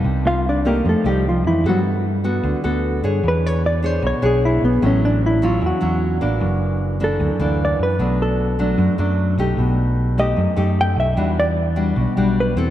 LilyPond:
<<
  \new Staff \with { instrumentName = "Hollow-body jazz guitar" } { \time 4/4 \key e \minor \tempo 4 = 151 r8 <f' f''>8 <d' d''>8 <bes bes'>8 <a a'>8 <g g'>8 <f f'>8 <e e'>8 | <fis fis'>8 r2. r8 | b'8 cis''8 d''8 c''8 cis''8 gis'8 e'8 b8 | cis'8 d'8 e'8 f'8 fis'2~ |
fis'4 r8 a'4. d''8 b'8~ | b'8 a'4. r2 | r4. dis''4. g''8 e''8~ | e''8 d''4. r4 b'4 | }
  \new Staff \with { instrumentName = "Nylon-string guitar" } { \time 4/4 \key e \minor << { <g ais dis'>4. <a ees' g'>4 <a ees' g'>4. | <b fis' a'>4 r8 <b fis' a'>4 <b fis' a'>4 <d' gis' cis''>8~ | <d' gis' cis''>4. <d' gis' cis''>4 <d' gis' cis''>4. | <fis cis' e'>4. <fis cis' e'>4 <fis cis' e'>4 <e ais d'>8~ |
<e ais d'>4. <e ais d'>4 <e ais d'>4. | <fis a d'>4. <fis a d'>4 <fis a d'>4 <a dis' g'>8~ | <a dis' g'>4. <a dis' g'>4 <a dis' g'>4. | <g d' fis'>4 r8 <g d' fis'>4 <g d' fis'>4 <c' e' a'>8 | } \\ { c2 f2 | g2 d2 | e2 b,2 | a,2 e2 |
fis,2 fis,2 | b,2 fis,2 | b,2 fis,2 | e2 b,2 | } >> }
  \new Staff \with { instrumentName = "Fingered electric bass" } { \clef bass \time 4/4 \key e \minor c,2 f,16 r16 c,4 f,8 | g,2 d,16 r16 d,4 g,8 | e,2 b,,16 r16 b,,4 b,,8 | a,,2 e,16 r16 e,4 a,,8 |
fis,,2 d,16 r16 d,4 fis,8 | b,,2 fis,16 r16 fis,4 b,,8 | b,,2 fis,16 r16 fis,4 b,,8 | e,2 b,,16 r16 b,,4 e,8 | }
>>